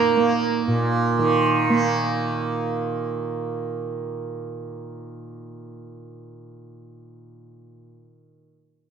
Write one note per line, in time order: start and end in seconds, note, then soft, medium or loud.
0.00 0.67 A#2 medium
0.00 1.19 D#3 medium
0.00 0.17 A#3 medium
0.00 0.52 A#3 medium
0.17 1.70 A#3 medium
0.67 7.82 A#2 medium
1.19 8.34 D#3 medium
1.70 7.59 A#3 medium